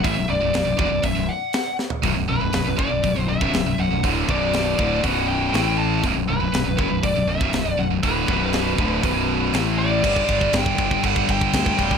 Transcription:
<<
  \new Staff \with { instrumentName = "Lead electric guitar" } { \time 4/4 \key b \minor \tempo 4 = 120 e''8 d''4 d''8 e''8 fis''4 r8 | r8 b'4 d''4 e''4 fis''8 | r8 d''4. fis''8 g''4 a''8 | r8 b'4. d''8 e''4 fis''8 |
b'2. r8 d''8~ | d''4 g''4 fis''8 g''4. | }
  \new Staff \with { instrumentName = "Distorted electric guitar" } { \clef bass \time 4/4 \key b \minor <a, e>16 <b,, fis,>16 <b,, fis,>16 <b,, fis,>16 <b,, fis,>16 <b,, fis,>16 <e, b,>16 <b,, fis,>16 <b,, fis,>16 <b,, fis,>16 r4. | <b,, fis,>16 <b,, fis,>16 <b,, fis,>16 <b,, fis,>16 <b,, fis,>16 <b,, fis,>16 <fis, cis>16 <b,, fis,>16 <b,, fis,>16 <b,, fis,>16 <b,, fis,>16 <b,, fis,>16 <b,, fis,>16 <b,, fis,>16 <b,, fis,>16 <b,, fis,>16 | <d, a, d>8 <b,, fis, b,>4 <d, a, d>8 <b,, fis, b,>4 <a, e a>4 | <b,, fis,>16 <b,, fis,>16 <b,, fis,>16 <b,, fis,>16 <b,, fis,>16 <b,, fis,>16 <fis, cis>16 <b,, fis,>16 <b,, fis,>16 <b,, fis,>16 <b,, fis,>16 <b,, fis,>16 <b,, fis,>16 <b,, fis,>16 <b,, fis,>16 <b,, fis,>16 |
<d, a, d>8 <b,, fis, b,>4 <d, a, d>8 <b,, fis, b,>4 <a, e a>4 | <g, d g>2.~ <g, d g>8 <g, d g>8 | }
  \new Staff \with { instrumentName = "Distorted electric guitar" } { \clef bass \time 4/4 \key b \minor <a, e>16 <b,, fis,>16 <b,, fis,>16 <b,, fis,>16 <b,, fis,>16 <b,, fis,>16 <e, b,>16 <b,, fis,>16 <b,, fis,>16 <b,, fis,>16 r4. | <b,, fis,>16 <b,, fis,>16 <b,, fis,>16 <b,, fis,>16 <b,, fis,>16 <b,, fis,>16 <fis, cis>16 <b,, fis,>16 <b,, fis,>16 <b,, fis,>16 <b,, fis,>16 <b,, fis,>16 <b,, fis,>16 <b,, fis,>16 <b,, fis,>16 <b,, fis,>16 | <d, a, d>8 <b,, fis, b,>4 <d, a, d>8 <b,, fis, b,>4 <a, e a>4 | <b,, fis,>16 <b,, fis,>16 <b,, fis,>16 <b,, fis,>16 <b,, fis,>16 <b,, fis,>16 <fis, cis>16 <b,, fis,>16 <b,, fis,>16 <b,, fis,>16 <b,, fis,>16 <b,, fis,>16 <b,, fis,>16 <b,, fis,>16 <b,, fis,>16 <b,, fis,>16 |
<d, a, d>8 <b,, fis, b,>4 <d, a, d>8 <b,, fis, b,>4 <a, e a>4 | <g, d g>2 <g, d g>2 | }
  \new Staff \with { instrumentName = "Distorted electric guitar" } { \clef bass \time 4/4 \key b \minor <a, e>16 <b,, fis,>16 <b,, fis,>16 <b,, fis,>16 <b,, fis,>16 <b,, fis,>16 <e, b,>16 <b,, fis,>16 <b,, fis,>16 <b,, fis,>16 r4. | <b,, fis,>16 <b,, fis,>16 <b,, fis,>16 <b,, fis,>16 <b,, fis,>16 <b,, fis,>16 <fis, cis>16 <b,, fis,>16 <b,, fis,>16 <b,, fis,>16 <b,, fis,>16 <b,, fis,>16 <b,, fis,>16 <b,, fis,>16 <b,, fis,>16 <b,, fis,>16 | <d, a, d>8 <b,, fis, b,>4 <d, a, d>8 <b,, fis, b,>4 <a, e a>4 | <b,, fis,>16 <b,, fis,>16 <b,, fis,>16 <b,, fis,>16 <b,, fis,>16 <b,, fis,>16 <fis, cis>16 <b,, fis,>16 <b,, fis,>16 <b,, fis,>16 <b,, fis,>16 <b,, fis,>16 <b,, fis,>16 <b,, fis,>16 <b,, fis,>16 <b,, fis,>16 |
<d, a, d>8 <b,, fis, b,>4 <d, a, d>8 <b,, fis, b,>4 <a, e a>4 | r1 | }
  \new Staff \with { instrumentName = "Fingered electric bass" } { \clef bass \time 4/4 \key b \minor a,,16 b,,,16 b,,,16 b,,,16 b,,,16 b,,,16 e,,16 b,,,16 b,,,16 b,,,16 r4. | b,,,16 b,,,16 b,,,16 b,,,16 b,,,16 b,,,16 fis,,16 b,,,16 b,,,16 b,,,16 b,,,16 b,,,16 b,,,16 b,,,16 b,,,16 b,,,16 | d,,8 b,,,4 d,,8 b,,,4 a,,4 | b,,,16 b,,,16 b,,,16 b,,,16 b,,,16 b,,,16 fis,,16 b,,,16 b,,,16 b,,,16 b,,,16 b,,,16 b,,,16 b,,,16 b,,,16 b,,,16 |
d,,8 b,,,4 d,,8 b,,,4 a,,4 | g,,8 g,,8 g,,8 g,,8 g,,8 g,,8 d,8 d,,8 | }
  \new DrumStaff \with { instrumentName = "Drums" } \drummode { \time 4/4 <hho bd>4 <hho sn>8 bd8 <hho bd>4 <hho sn>8 sn16 tomfh16 | <hho bd>4 <hho sn>8 bd8 <hho bd>8. bd16 <hho sn>4 | <hho bd>8 bd8 <hho sn>8 bd8 <hho bd>4 <hho sn>4 | <hho bd>4 <hho sn>8 bd8 <hho bd>8. bd16 <hho sn>4 |
<hho bd>8 bd8 <hho sn>8 bd8 <hho bd>4 <hho sn>4 | <cymc bd>16 bd16 <cymc bd>16 bd16 <cymc bd sn>16 bd16 <cymc bd>16 bd16 <cymc bd>16 bd16 <cymc bd>16 bd16 <cymc bd sn>16 bd16 <cymc bd>16 bd16 | }
>>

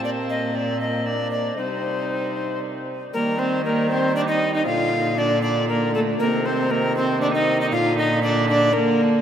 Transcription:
<<
  \new Staff \with { instrumentName = "Recorder" } { \time 3/4 \key bes \mixolydian \tempo 4 = 117 d''8 ees''8 d''8 ees''8 d''8 d''8 | c''2 r4 | bes'8 c''8 bes'8 c''8 d''16 ees''8 ees''16 | f''4 d''8 d''8 bes'8 a'8 |
bes'8 c''8 bes'8 c''8 d''16 ees''8 ees''16 | f''8 ees''8 d''8 d''8 bes'4 | }
  \new Staff \with { instrumentName = "Viola" } { \time 3/4 \key bes \mixolydian c'2 d'4 | ees'2~ ees'8 r8 | bes8 c'8 bes8 c'8 d'16 ees'8 ees'16 | f'4 d'8 d'8 bes8 a8 |
bes8 c'8 bes8 c'8 d'16 ees'8 ees'16 | f'8 ees'8 d'8 d'8 bes4 | }
  \new Staff \with { instrumentName = "Trombone" } { \clef bass \time 3/4 \key bes \mixolydian bes4 bes2 | g2~ g8 r8 | g4 g2 | d4 d4 d4 |
ees2. | d4 d4 d4 | }
  \new Staff \with { instrumentName = "Cello" } { \clef bass \time 3/4 \key bes \mixolydian bes,2. | c2~ c8 r8 | ees2. | bes,2. |
c2. | bes,2. | }
>>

